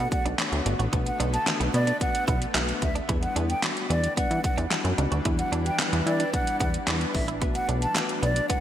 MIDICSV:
0, 0, Header, 1, 8, 480
1, 0, Start_track
1, 0, Key_signature, 2, "minor"
1, 0, Tempo, 540541
1, 825, Time_signature, 4, 2, 24, 8
1, 7639, End_track
2, 0, Start_track
2, 0, Title_t, "Flute"
2, 0, Program_c, 0, 73
2, 106, Note_on_c, 0, 78, 87
2, 210, Note_off_c, 0, 78, 0
2, 946, Note_on_c, 0, 78, 80
2, 1050, Note_off_c, 0, 78, 0
2, 1186, Note_on_c, 0, 81, 80
2, 1290, Note_off_c, 0, 81, 0
2, 1544, Note_on_c, 0, 74, 83
2, 1753, Note_off_c, 0, 74, 0
2, 1784, Note_on_c, 0, 78, 93
2, 1994, Note_off_c, 0, 78, 0
2, 2025, Note_on_c, 0, 78, 78
2, 2129, Note_off_c, 0, 78, 0
2, 2504, Note_on_c, 0, 76, 76
2, 2609, Note_off_c, 0, 76, 0
2, 2864, Note_on_c, 0, 78, 76
2, 2969, Note_off_c, 0, 78, 0
2, 3107, Note_on_c, 0, 79, 73
2, 3211, Note_off_c, 0, 79, 0
2, 3465, Note_on_c, 0, 74, 87
2, 3674, Note_off_c, 0, 74, 0
2, 3707, Note_on_c, 0, 78, 87
2, 3915, Note_off_c, 0, 78, 0
2, 3946, Note_on_c, 0, 78, 87
2, 4050, Note_off_c, 0, 78, 0
2, 4784, Note_on_c, 0, 78, 80
2, 4889, Note_off_c, 0, 78, 0
2, 5027, Note_on_c, 0, 79, 82
2, 5130, Note_off_c, 0, 79, 0
2, 5384, Note_on_c, 0, 74, 80
2, 5593, Note_off_c, 0, 74, 0
2, 5626, Note_on_c, 0, 78, 89
2, 5835, Note_off_c, 0, 78, 0
2, 5864, Note_on_c, 0, 78, 81
2, 5969, Note_off_c, 0, 78, 0
2, 6344, Note_on_c, 0, 76, 77
2, 6449, Note_off_c, 0, 76, 0
2, 6706, Note_on_c, 0, 78, 76
2, 6810, Note_off_c, 0, 78, 0
2, 6946, Note_on_c, 0, 81, 74
2, 7050, Note_off_c, 0, 81, 0
2, 7305, Note_on_c, 0, 74, 85
2, 7514, Note_off_c, 0, 74, 0
2, 7544, Note_on_c, 0, 78, 91
2, 7639, Note_off_c, 0, 78, 0
2, 7639, End_track
3, 0, Start_track
3, 0, Title_t, "Clean electric guitar"
3, 0, Program_c, 1, 27
3, 227, Note_on_c, 1, 62, 80
3, 301, Note_off_c, 1, 62, 0
3, 585, Note_on_c, 1, 62, 77
3, 660, Note_off_c, 1, 62, 0
3, 704, Note_on_c, 1, 66, 76
3, 779, Note_off_c, 1, 66, 0
3, 824, Note_on_c, 1, 59, 100
3, 899, Note_off_c, 1, 59, 0
3, 1064, Note_on_c, 1, 62, 93
3, 1139, Note_off_c, 1, 62, 0
3, 1423, Note_on_c, 1, 59, 79
3, 1499, Note_off_c, 1, 59, 0
3, 1662, Note_on_c, 1, 62, 82
3, 1738, Note_off_c, 1, 62, 0
3, 2022, Note_on_c, 1, 64, 82
3, 2098, Note_off_c, 1, 64, 0
3, 2263, Note_on_c, 1, 64, 76
3, 2338, Note_off_c, 1, 64, 0
3, 2623, Note_on_c, 1, 62, 75
3, 2698, Note_off_c, 1, 62, 0
3, 2742, Note_on_c, 1, 64, 93
3, 2818, Note_off_c, 1, 64, 0
3, 2983, Note_on_c, 1, 62, 73
3, 3059, Note_off_c, 1, 62, 0
3, 3465, Note_on_c, 1, 59, 74
3, 3539, Note_off_c, 1, 59, 0
3, 3705, Note_on_c, 1, 59, 92
3, 3780, Note_off_c, 1, 59, 0
3, 4063, Note_on_c, 1, 62, 79
3, 4138, Note_off_c, 1, 62, 0
3, 4424, Note_on_c, 1, 62, 77
3, 4499, Note_off_c, 1, 62, 0
3, 4546, Note_on_c, 1, 66, 79
3, 4620, Note_off_c, 1, 66, 0
3, 4667, Note_on_c, 1, 64, 97
3, 4741, Note_off_c, 1, 64, 0
3, 4905, Note_on_c, 1, 62, 88
3, 4980, Note_off_c, 1, 62, 0
3, 5266, Note_on_c, 1, 59, 85
3, 5340, Note_off_c, 1, 59, 0
3, 5506, Note_on_c, 1, 62, 77
3, 5580, Note_off_c, 1, 62, 0
3, 5865, Note_on_c, 1, 59, 80
3, 5940, Note_off_c, 1, 59, 0
3, 6106, Note_on_c, 1, 62, 80
3, 6180, Note_off_c, 1, 62, 0
3, 6466, Note_on_c, 1, 64, 77
3, 6540, Note_off_c, 1, 64, 0
3, 6585, Note_on_c, 1, 59, 96
3, 6660, Note_off_c, 1, 59, 0
3, 6826, Note_on_c, 1, 62, 71
3, 6900, Note_off_c, 1, 62, 0
3, 7305, Note_on_c, 1, 59, 78
3, 7380, Note_off_c, 1, 59, 0
3, 7547, Note_on_c, 1, 59, 93
3, 7621, Note_off_c, 1, 59, 0
3, 7639, End_track
4, 0, Start_track
4, 0, Title_t, "Tine electric piano"
4, 0, Program_c, 2, 4
4, 0, Note_on_c, 2, 57, 86
4, 0, Note_on_c, 2, 59, 79
4, 0, Note_on_c, 2, 62, 77
4, 0, Note_on_c, 2, 66, 77
4, 0, Note_on_c, 2, 69, 95
4, 248, Note_off_c, 2, 57, 0
4, 249, Note_off_c, 2, 59, 0
4, 249, Note_off_c, 2, 62, 0
4, 249, Note_off_c, 2, 66, 0
4, 250, Note_off_c, 2, 69, 0
4, 342, Note_on_c, 2, 57, 92
4, 343, Note_on_c, 2, 59, 77
4, 344, Note_on_c, 2, 62, 79
4, 345, Note_on_c, 2, 66, 78
4, 347, Note_on_c, 2, 73, 103
4, 728, Note_off_c, 2, 57, 0
4, 728, Note_off_c, 2, 59, 0
4, 729, Note_off_c, 2, 62, 0
4, 729, Note_off_c, 2, 66, 0
4, 730, Note_off_c, 2, 73, 0
4, 824, Note_on_c, 2, 57, 90
4, 824, Note_on_c, 2, 59, 84
4, 826, Note_on_c, 2, 62, 83
4, 827, Note_on_c, 2, 66, 88
4, 828, Note_on_c, 2, 71, 105
4, 1209, Note_off_c, 2, 57, 0
4, 1209, Note_off_c, 2, 59, 0
4, 1210, Note_off_c, 2, 62, 0
4, 1210, Note_off_c, 2, 66, 0
4, 1211, Note_off_c, 2, 71, 0
4, 1302, Note_on_c, 2, 57, 83
4, 1303, Note_on_c, 2, 59, 77
4, 1304, Note_on_c, 2, 62, 73
4, 1306, Note_on_c, 2, 66, 74
4, 1307, Note_on_c, 2, 71, 95
4, 1688, Note_off_c, 2, 57, 0
4, 1688, Note_off_c, 2, 59, 0
4, 1689, Note_off_c, 2, 62, 0
4, 1690, Note_off_c, 2, 66, 0
4, 1690, Note_off_c, 2, 71, 0
4, 1783, Note_on_c, 2, 57, 78
4, 1783, Note_on_c, 2, 59, 73
4, 1785, Note_on_c, 2, 62, 75
4, 1786, Note_on_c, 2, 66, 74
4, 1787, Note_on_c, 2, 71, 90
4, 2168, Note_off_c, 2, 57, 0
4, 2168, Note_off_c, 2, 59, 0
4, 2169, Note_off_c, 2, 62, 0
4, 2170, Note_off_c, 2, 66, 0
4, 2170, Note_off_c, 2, 71, 0
4, 2264, Note_on_c, 2, 57, 93
4, 2265, Note_on_c, 2, 59, 83
4, 2267, Note_on_c, 2, 62, 85
4, 2268, Note_on_c, 2, 66, 86
4, 2269, Note_on_c, 2, 71, 99
4, 2649, Note_off_c, 2, 57, 0
4, 2649, Note_off_c, 2, 59, 0
4, 2650, Note_off_c, 2, 62, 0
4, 2651, Note_off_c, 2, 66, 0
4, 2651, Note_off_c, 2, 71, 0
4, 2742, Note_on_c, 2, 55, 86
4, 2742, Note_on_c, 2, 59, 76
4, 2744, Note_on_c, 2, 62, 76
4, 2746, Note_on_c, 2, 64, 76
4, 2746, Note_on_c, 2, 71, 91
4, 3128, Note_off_c, 2, 55, 0
4, 3128, Note_off_c, 2, 59, 0
4, 3129, Note_off_c, 2, 62, 0
4, 3130, Note_off_c, 2, 64, 0
4, 3130, Note_off_c, 2, 71, 0
4, 3221, Note_on_c, 2, 55, 80
4, 3223, Note_on_c, 2, 59, 73
4, 3225, Note_on_c, 2, 62, 72
4, 3225, Note_on_c, 2, 64, 72
4, 3227, Note_on_c, 2, 66, 87
4, 3607, Note_off_c, 2, 55, 0
4, 3608, Note_off_c, 2, 59, 0
4, 3609, Note_off_c, 2, 62, 0
4, 3609, Note_off_c, 2, 64, 0
4, 3610, Note_off_c, 2, 66, 0
4, 3700, Note_on_c, 2, 55, 89
4, 3702, Note_on_c, 2, 59, 78
4, 3702, Note_on_c, 2, 62, 80
4, 3704, Note_on_c, 2, 64, 81
4, 3706, Note_on_c, 2, 71, 94
4, 4087, Note_off_c, 2, 55, 0
4, 4088, Note_off_c, 2, 59, 0
4, 4088, Note_off_c, 2, 62, 0
4, 4089, Note_off_c, 2, 64, 0
4, 4090, Note_off_c, 2, 71, 0
4, 4182, Note_on_c, 2, 55, 91
4, 4183, Note_on_c, 2, 59, 78
4, 4184, Note_on_c, 2, 62, 80
4, 4185, Note_on_c, 2, 64, 80
4, 4186, Note_on_c, 2, 66, 97
4, 4568, Note_off_c, 2, 55, 0
4, 4568, Note_off_c, 2, 59, 0
4, 4569, Note_off_c, 2, 62, 0
4, 4569, Note_off_c, 2, 64, 0
4, 4570, Note_off_c, 2, 66, 0
4, 4662, Note_on_c, 2, 55, 92
4, 4663, Note_on_c, 2, 59, 85
4, 4665, Note_on_c, 2, 62, 86
4, 4666, Note_on_c, 2, 64, 90
4, 4667, Note_on_c, 2, 66, 102
4, 5048, Note_off_c, 2, 55, 0
4, 5048, Note_off_c, 2, 59, 0
4, 5049, Note_off_c, 2, 62, 0
4, 5050, Note_off_c, 2, 64, 0
4, 5050, Note_off_c, 2, 66, 0
4, 5144, Note_on_c, 2, 55, 82
4, 5145, Note_on_c, 2, 59, 80
4, 5146, Note_on_c, 2, 62, 78
4, 5147, Note_on_c, 2, 64, 77
4, 5149, Note_on_c, 2, 71, 93
4, 5529, Note_off_c, 2, 55, 0
4, 5529, Note_off_c, 2, 59, 0
4, 5530, Note_off_c, 2, 62, 0
4, 5530, Note_off_c, 2, 64, 0
4, 5531, Note_off_c, 2, 71, 0
4, 5620, Note_on_c, 2, 55, 79
4, 5623, Note_on_c, 2, 59, 73
4, 5623, Note_on_c, 2, 62, 73
4, 5625, Note_on_c, 2, 64, 73
4, 5625, Note_on_c, 2, 74, 88
4, 6007, Note_off_c, 2, 55, 0
4, 6008, Note_off_c, 2, 59, 0
4, 6008, Note_off_c, 2, 62, 0
4, 6009, Note_off_c, 2, 64, 0
4, 6009, Note_off_c, 2, 74, 0
4, 6103, Note_on_c, 2, 55, 89
4, 6103, Note_on_c, 2, 59, 82
4, 6105, Note_on_c, 2, 62, 84
4, 6106, Note_on_c, 2, 64, 84
4, 6107, Note_on_c, 2, 71, 100
4, 6488, Note_off_c, 2, 55, 0
4, 6488, Note_off_c, 2, 59, 0
4, 6489, Note_off_c, 2, 62, 0
4, 6490, Note_off_c, 2, 64, 0
4, 6490, Note_off_c, 2, 71, 0
4, 6583, Note_on_c, 2, 57, 84
4, 6583, Note_on_c, 2, 59, 76
4, 6585, Note_on_c, 2, 62, 74
4, 6586, Note_on_c, 2, 66, 76
4, 6587, Note_on_c, 2, 71, 91
4, 6968, Note_off_c, 2, 57, 0
4, 6968, Note_off_c, 2, 59, 0
4, 6969, Note_off_c, 2, 62, 0
4, 6970, Note_off_c, 2, 66, 0
4, 6970, Note_off_c, 2, 71, 0
4, 7063, Note_on_c, 2, 57, 79
4, 7064, Note_on_c, 2, 59, 73
4, 7065, Note_on_c, 2, 62, 71
4, 7065, Note_on_c, 2, 66, 73
4, 7068, Note_on_c, 2, 71, 87
4, 7448, Note_off_c, 2, 57, 0
4, 7449, Note_off_c, 2, 59, 0
4, 7449, Note_off_c, 2, 62, 0
4, 7449, Note_off_c, 2, 66, 0
4, 7451, Note_off_c, 2, 71, 0
4, 7544, Note_on_c, 2, 57, 87
4, 7545, Note_on_c, 2, 59, 76
4, 7546, Note_on_c, 2, 62, 77
4, 7547, Note_on_c, 2, 66, 78
4, 7548, Note_on_c, 2, 71, 94
4, 7639, Note_off_c, 2, 57, 0
4, 7639, Note_off_c, 2, 59, 0
4, 7639, Note_off_c, 2, 62, 0
4, 7639, Note_off_c, 2, 66, 0
4, 7639, Note_off_c, 2, 71, 0
4, 7639, End_track
5, 0, Start_track
5, 0, Title_t, "Ambient pad"
5, 0, Program_c, 3, 92
5, 0, Note_on_c, 3, 50, 80
5, 0, Note_on_c, 3, 57, 72
5, 0, Note_on_c, 3, 59, 88
5, 2710, Note_off_c, 3, 50, 0
5, 2710, Note_off_c, 3, 57, 0
5, 2710, Note_off_c, 3, 59, 0
5, 2744, Note_on_c, 3, 55, 92
5, 2744, Note_on_c, 3, 62, 76
5, 2745, Note_on_c, 3, 52, 86
5, 6549, Note_off_c, 3, 52, 0
5, 6549, Note_off_c, 3, 55, 0
5, 6585, Note_on_c, 3, 57, 83
5, 6586, Note_on_c, 3, 59, 75
5, 7639, Note_off_c, 3, 57, 0
5, 7639, Note_off_c, 3, 59, 0
5, 7639, Note_off_c, 3, 62, 0
5, 7639, End_track
6, 0, Start_track
6, 0, Title_t, "Analog synth bass"
6, 0, Program_c, 4, 38
6, 226, Note_on_c, 4, 35, 93
6, 307, Note_off_c, 4, 35, 0
6, 465, Note_on_c, 4, 38, 96
6, 546, Note_off_c, 4, 38, 0
6, 584, Note_on_c, 4, 31, 99
6, 666, Note_off_c, 4, 31, 0
6, 705, Note_on_c, 4, 33, 94
6, 786, Note_off_c, 4, 33, 0
6, 825, Note_on_c, 4, 35, 106
6, 987, Note_off_c, 4, 35, 0
6, 1065, Note_on_c, 4, 35, 108
6, 1227, Note_off_c, 4, 35, 0
6, 1424, Note_on_c, 4, 35, 87
6, 1506, Note_off_c, 4, 35, 0
6, 1544, Note_on_c, 4, 47, 105
6, 1707, Note_off_c, 4, 47, 0
6, 2024, Note_on_c, 4, 35, 91
6, 2187, Note_off_c, 4, 35, 0
6, 2263, Note_on_c, 4, 35, 94
6, 2426, Note_off_c, 4, 35, 0
6, 2506, Note_on_c, 4, 38, 94
6, 2668, Note_off_c, 4, 38, 0
6, 2745, Note_on_c, 4, 40, 111
6, 2907, Note_off_c, 4, 40, 0
6, 2984, Note_on_c, 4, 40, 107
6, 3147, Note_off_c, 4, 40, 0
6, 3463, Note_on_c, 4, 40, 90
6, 3626, Note_off_c, 4, 40, 0
6, 3706, Note_on_c, 4, 52, 45
6, 3753, Note_off_c, 4, 52, 0
6, 3823, Note_on_c, 4, 52, 91
6, 3905, Note_off_c, 4, 52, 0
6, 4063, Note_on_c, 4, 40, 106
6, 4145, Note_off_c, 4, 40, 0
6, 4304, Note_on_c, 4, 42, 97
6, 4385, Note_off_c, 4, 42, 0
6, 4424, Note_on_c, 4, 37, 100
6, 4505, Note_off_c, 4, 37, 0
6, 4543, Note_on_c, 4, 38, 88
6, 4625, Note_off_c, 4, 38, 0
6, 4665, Note_on_c, 4, 40, 113
6, 4827, Note_off_c, 4, 40, 0
6, 4903, Note_on_c, 4, 40, 112
6, 5066, Note_off_c, 4, 40, 0
6, 5263, Note_on_c, 4, 40, 100
6, 5345, Note_off_c, 4, 40, 0
6, 5384, Note_on_c, 4, 52, 102
6, 5547, Note_off_c, 4, 52, 0
6, 5865, Note_on_c, 4, 40, 101
6, 6027, Note_off_c, 4, 40, 0
6, 6105, Note_on_c, 4, 40, 98
6, 6267, Note_off_c, 4, 40, 0
6, 6346, Note_on_c, 4, 33, 91
6, 6586, Note_on_c, 4, 35, 110
6, 6599, Note_off_c, 4, 33, 0
6, 6748, Note_off_c, 4, 35, 0
6, 6825, Note_on_c, 4, 35, 102
6, 6987, Note_off_c, 4, 35, 0
6, 7304, Note_on_c, 4, 35, 92
6, 7466, Note_off_c, 4, 35, 0
6, 7545, Note_on_c, 4, 47, 46
6, 7593, Note_off_c, 4, 47, 0
6, 7639, End_track
7, 0, Start_track
7, 0, Title_t, "Muted clean electric guitar strokes"
7, 106, Note_on_c, 9, 29, 49
7, 195, Note_off_c, 9, 29, 0
7, 944, Note_on_c, 9, 29, 49
7, 1033, Note_off_c, 9, 29, 0
7, 1543, Note_on_c, 9, 29, 47
7, 1632, Note_off_c, 9, 29, 0
7, 2503, Note_on_c, 9, 29, 46
7, 2592, Note_off_c, 9, 29, 0
7, 2865, Note_on_c, 9, 29, 50
7, 2954, Note_off_c, 9, 29, 0
7, 3944, Note_on_c, 9, 29, 48
7, 4032, Note_off_c, 9, 29, 0
7, 4184, Note_on_c, 9, 29, 50
7, 4273, Note_off_c, 9, 29, 0
7, 4785, Note_on_c, 9, 29, 48
7, 4874, Note_off_c, 9, 29, 0
7, 5385, Note_on_c, 9, 29, 46
7, 5474, Note_off_c, 9, 29, 0
7, 6345, Note_on_c, 9, 29, 45
7, 6434, Note_off_c, 9, 29, 0
7, 6705, Note_on_c, 9, 29, 46
7, 6794, Note_off_c, 9, 29, 0
7, 7639, End_track
8, 0, Start_track
8, 0, Title_t, "Drums"
8, 105, Note_on_c, 9, 36, 98
8, 109, Note_on_c, 9, 42, 74
8, 194, Note_off_c, 9, 36, 0
8, 197, Note_off_c, 9, 42, 0
8, 228, Note_on_c, 9, 42, 62
8, 317, Note_off_c, 9, 42, 0
8, 341, Note_on_c, 9, 38, 83
8, 347, Note_on_c, 9, 39, 107
8, 347, Note_on_c, 9, 42, 92
8, 430, Note_off_c, 9, 38, 0
8, 436, Note_off_c, 9, 39, 0
8, 436, Note_off_c, 9, 42, 0
8, 467, Note_on_c, 9, 42, 51
8, 556, Note_off_c, 9, 42, 0
8, 586, Note_on_c, 9, 42, 89
8, 674, Note_off_c, 9, 42, 0
8, 707, Note_on_c, 9, 42, 56
8, 796, Note_off_c, 9, 42, 0
8, 825, Note_on_c, 9, 36, 106
8, 825, Note_on_c, 9, 42, 80
8, 913, Note_off_c, 9, 42, 0
8, 914, Note_off_c, 9, 36, 0
8, 946, Note_on_c, 9, 42, 54
8, 1034, Note_off_c, 9, 42, 0
8, 1068, Note_on_c, 9, 42, 85
8, 1157, Note_off_c, 9, 42, 0
8, 1187, Note_on_c, 9, 42, 57
8, 1276, Note_off_c, 9, 42, 0
8, 1301, Note_on_c, 9, 38, 93
8, 1307, Note_on_c, 9, 39, 120
8, 1308, Note_on_c, 9, 42, 104
8, 1390, Note_off_c, 9, 38, 0
8, 1396, Note_off_c, 9, 39, 0
8, 1396, Note_off_c, 9, 42, 0
8, 1427, Note_on_c, 9, 42, 62
8, 1515, Note_off_c, 9, 42, 0
8, 1547, Note_on_c, 9, 42, 77
8, 1636, Note_off_c, 9, 42, 0
8, 1663, Note_on_c, 9, 42, 62
8, 1752, Note_off_c, 9, 42, 0
8, 1785, Note_on_c, 9, 36, 81
8, 1787, Note_on_c, 9, 42, 101
8, 1874, Note_off_c, 9, 36, 0
8, 1876, Note_off_c, 9, 42, 0
8, 1907, Note_on_c, 9, 42, 70
8, 1996, Note_off_c, 9, 42, 0
8, 2024, Note_on_c, 9, 36, 100
8, 2027, Note_on_c, 9, 42, 76
8, 2113, Note_off_c, 9, 36, 0
8, 2116, Note_off_c, 9, 42, 0
8, 2146, Note_on_c, 9, 42, 61
8, 2235, Note_off_c, 9, 42, 0
8, 2260, Note_on_c, 9, 38, 86
8, 2266, Note_on_c, 9, 39, 103
8, 2266, Note_on_c, 9, 42, 88
8, 2349, Note_off_c, 9, 38, 0
8, 2354, Note_off_c, 9, 42, 0
8, 2355, Note_off_c, 9, 39, 0
8, 2385, Note_on_c, 9, 42, 51
8, 2474, Note_off_c, 9, 42, 0
8, 2505, Note_on_c, 9, 42, 85
8, 2506, Note_on_c, 9, 36, 86
8, 2593, Note_off_c, 9, 42, 0
8, 2594, Note_off_c, 9, 36, 0
8, 2625, Note_on_c, 9, 42, 52
8, 2714, Note_off_c, 9, 42, 0
8, 2744, Note_on_c, 9, 42, 84
8, 2745, Note_on_c, 9, 36, 108
8, 2833, Note_off_c, 9, 42, 0
8, 2834, Note_off_c, 9, 36, 0
8, 2865, Note_on_c, 9, 42, 53
8, 2953, Note_off_c, 9, 42, 0
8, 2986, Note_on_c, 9, 42, 77
8, 3074, Note_off_c, 9, 42, 0
8, 3105, Note_on_c, 9, 42, 56
8, 3194, Note_off_c, 9, 42, 0
8, 3220, Note_on_c, 9, 38, 91
8, 3226, Note_on_c, 9, 39, 121
8, 3227, Note_on_c, 9, 42, 109
8, 3309, Note_off_c, 9, 38, 0
8, 3315, Note_off_c, 9, 39, 0
8, 3315, Note_off_c, 9, 42, 0
8, 3346, Note_on_c, 9, 42, 65
8, 3435, Note_off_c, 9, 42, 0
8, 3468, Note_on_c, 9, 42, 74
8, 3557, Note_off_c, 9, 42, 0
8, 3584, Note_on_c, 9, 42, 64
8, 3672, Note_off_c, 9, 42, 0
8, 3705, Note_on_c, 9, 36, 87
8, 3707, Note_on_c, 9, 42, 97
8, 3794, Note_off_c, 9, 36, 0
8, 3796, Note_off_c, 9, 42, 0
8, 3827, Note_on_c, 9, 42, 71
8, 3916, Note_off_c, 9, 42, 0
8, 3944, Note_on_c, 9, 36, 101
8, 3947, Note_on_c, 9, 42, 73
8, 4033, Note_off_c, 9, 36, 0
8, 4036, Note_off_c, 9, 42, 0
8, 4066, Note_on_c, 9, 42, 60
8, 4155, Note_off_c, 9, 42, 0
8, 4180, Note_on_c, 9, 38, 83
8, 4186, Note_on_c, 9, 39, 110
8, 4186, Note_on_c, 9, 42, 85
8, 4269, Note_off_c, 9, 38, 0
8, 4275, Note_off_c, 9, 39, 0
8, 4275, Note_off_c, 9, 42, 0
8, 4305, Note_on_c, 9, 42, 52
8, 4394, Note_off_c, 9, 42, 0
8, 4425, Note_on_c, 9, 42, 89
8, 4514, Note_off_c, 9, 42, 0
8, 4544, Note_on_c, 9, 42, 54
8, 4633, Note_off_c, 9, 42, 0
8, 4664, Note_on_c, 9, 42, 82
8, 4665, Note_on_c, 9, 36, 106
8, 4753, Note_off_c, 9, 42, 0
8, 4754, Note_off_c, 9, 36, 0
8, 4785, Note_on_c, 9, 42, 55
8, 4874, Note_off_c, 9, 42, 0
8, 4908, Note_on_c, 9, 42, 82
8, 4996, Note_off_c, 9, 42, 0
8, 5026, Note_on_c, 9, 42, 59
8, 5115, Note_off_c, 9, 42, 0
8, 5140, Note_on_c, 9, 38, 97
8, 5146, Note_on_c, 9, 39, 112
8, 5147, Note_on_c, 9, 42, 101
8, 5229, Note_off_c, 9, 38, 0
8, 5235, Note_off_c, 9, 39, 0
8, 5236, Note_off_c, 9, 42, 0
8, 5266, Note_on_c, 9, 42, 64
8, 5355, Note_off_c, 9, 42, 0
8, 5388, Note_on_c, 9, 42, 78
8, 5477, Note_off_c, 9, 42, 0
8, 5505, Note_on_c, 9, 42, 64
8, 5593, Note_off_c, 9, 42, 0
8, 5626, Note_on_c, 9, 36, 85
8, 5628, Note_on_c, 9, 42, 97
8, 5715, Note_off_c, 9, 36, 0
8, 5717, Note_off_c, 9, 42, 0
8, 5748, Note_on_c, 9, 42, 69
8, 5837, Note_off_c, 9, 42, 0
8, 5865, Note_on_c, 9, 36, 99
8, 5867, Note_on_c, 9, 42, 76
8, 5953, Note_off_c, 9, 36, 0
8, 5956, Note_off_c, 9, 42, 0
8, 5986, Note_on_c, 9, 42, 60
8, 6075, Note_off_c, 9, 42, 0
8, 6100, Note_on_c, 9, 38, 86
8, 6106, Note_on_c, 9, 39, 108
8, 6106, Note_on_c, 9, 42, 86
8, 6189, Note_off_c, 9, 38, 0
8, 6195, Note_off_c, 9, 39, 0
8, 6195, Note_off_c, 9, 42, 0
8, 6226, Note_on_c, 9, 42, 53
8, 6315, Note_off_c, 9, 42, 0
8, 6345, Note_on_c, 9, 46, 90
8, 6346, Note_on_c, 9, 36, 89
8, 6434, Note_off_c, 9, 46, 0
8, 6435, Note_off_c, 9, 36, 0
8, 6467, Note_on_c, 9, 42, 54
8, 6555, Note_off_c, 9, 42, 0
8, 6585, Note_on_c, 9, 42, 83
8, 6586, Note_on_c, 9, 36, 104
8, 6674, Note_off_c, 9, 36, 0
8, 6674, Note_off_c, 9, 42, 0
8, 6705, Note_on_c, 9, 42, 57
8, 6794, Note_off_c, 9, 42, 0
8, 6826, Note_on_c, 9, 42, 77
8, 6915, Note_off_c, 9, 42, 0
8, 6945, Note_on_c, 9, 42, 57
8, 7034, Note_off_c, 9, 42, 0
8, 7060, Note_on_c, 9, 38, 99
8, 7064, Note_on_c, 9, 39, 95
8, 7066, Note_off_c, 9, 39, 0
8, 7066, Note_on_c, 9, 39, 119
8, 7066, Note_on_c, 9, 42, 107
8, 7148, Note_off_c, 9, 38, 0
8, 7154, Note_off_c, 9, 39, 0
8, 7155, Note_off_c, 9, 42, 0
8, 7187, Note_on_c, 9, 42, 62
8, 7275, Note_off_c, 9, 42, 0
8, 7307, Note_on_c, 9, 42, 75
8, 7396, Note_off_c, 9, 42, 0
8, 7424, Note_on_c, 9, 42, 65
8, 7513, Note_off_c, 9, 42, 0
8, 7545, Note_on_c, 9, 36, 83
8, 7547, Note_on_c, 9, 42, 95
8, 7634, Note_off_c, 9, 36, 0
8, 7636, Note_off_c, 9, 42, 0
8, 7639, End_track
0, 0, End_of_file